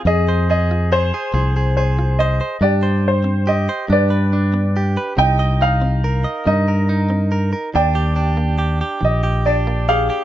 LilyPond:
<<
  \new Staff \with { instrumentName = "Grand piano" } { \time 6/8 \key c \minor \tempo 4. = 47 << { ees''8 ees''8 c''4 c''8 ees''8 | d''8 c''8 ees''8 d''4 r8 | g''8 f''4 ees''4. | g''4. ees''8 d''8 f''8 | } \\ { aes'4. r4. | g'4. b'4. | ees''4. bes'4. | d''4. r4 aes'8 | } >> }
  \new Staff \with { instrumentName = "Clean electric guitar" } { \time 6/8 \key c \minor << { aes'16 c''16 aes'8 aes'16 aes'16 aes'16 aes'16 aes'8 c''16 c''16 | d'16 c''8. g'16 c''16 d'16 b'16 d'8 g'16 b'16 | ees'16 ees''16 ees'8 bes'16 ees''16 ees'16 bes'16 ees'8 bes'16 bes'16 | d'16 g'16 d'8 g'16 g'8 g'16 d'8 g'16 g'16 | } \\ { f8. f'8. f8. f'8. | g,8. c'8. g,8. b8. | c8. c'8. c8. c'8. | ees8. bes8. ees8. bes8. | } >> }
  \new Staff \with { instrumentName = "Fingered electric bass" } { \clef bass \time 6/8 \key c \minor f,4. c,4. | g,4. g,4. | c,4. g,4. | ees,4. bes,,4. | }
>>